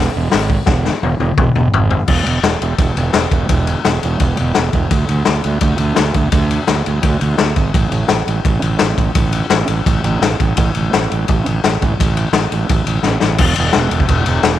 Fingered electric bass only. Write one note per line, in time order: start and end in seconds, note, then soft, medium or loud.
0.16 0.26 E1 medium
0.34 0.55 G#1 medium
0.67 0.89 E1 loud
1.03 1.13 E1 medium
1.20 1.31 E1 medium
1.37 1.48 E1 medium
1.56 1.67 E1 medium
1.74 1.95 G#1 medium
2.08 2.21 E1 medium
2.27 2.39 E1 medium
2.43 2.56 E1 medium
2.61 2.74 E1 medium
2.78 2.91 E1 medium
2.97 3.09 E1 medium
3.14 3.26 E1 medium
3.31 3.44 E1 medium
3.48 3.73 E1 medium
3.85 3.97 E1 medium
4.04 4.16 E1 medium
4.20 4.33 E1 medium
4.40 4.51 E1 medium
4.57 4.69 E1 medium
4.74 4.86 E1 medium
4.91 5.03 D2 loud
5.09 5.21 D2 medium
5.28 5.40 D2 loud
5.45 5.57 D2 medium
5.61 5.74 D2 medium
5.79 5.91 D2 medium
5.98 6.10 D2 medium
6.15 6.27 D2 medium
6.32 6.57 D2 medium
6.69 6.81 D2 medium
6.87 6.99 D2 medium
7.03 7.16 D2 medium
7.22 7.34 D2 medium
7.40 7.52 D2 medium
7.56 7.69 G#1 medium
7.74 7.87 A1 loud
7.91 8.04 A1 medium
8.09 8.22 A1 medium
8.27 8.40 A1 medium
8.45 8.57 A1 medium
8.62 8.75 A1 medium
8.81 8.93 A1 medium
8.97 9.10 A1 medium
9.15 9.40 A1 medium
9.51 9.63 A1 medium
9.68 9.81 A1 medium
9.86 9.99 A1 medium
10.04 10.16 A1 medium
10.21 10.34 A1 medium
10.40 10.52 A1 medium
10.57 10.70 A1 loud
10.75 10.88 A1 medium
10.94 11.06 A1 medium
11.12 11.24 A1 medium
11.29 11.41 A1 medium
11.47 11.59 A1 medium
11.64 11.76 A1 medium
11.81 11.93 A1 medium
11.99 12.23 A1 loud
12.33 12.45 A1 medium
12.52 12.64 A1 medium
12.69 12.82 A1 medium
12.87 12.99 A1 medium
13.03 13.16 A1 medium
13.22 13.35 A1 medium
13.39 13.54 E1 medium
13.58 13.72 E1 medium
13.75 13.89 E1 loud
13.91 14.06 E1 medium
14.09 14.24 E1 medium
14.27 14.41 E1 medium
14.44 14.59 E1 medium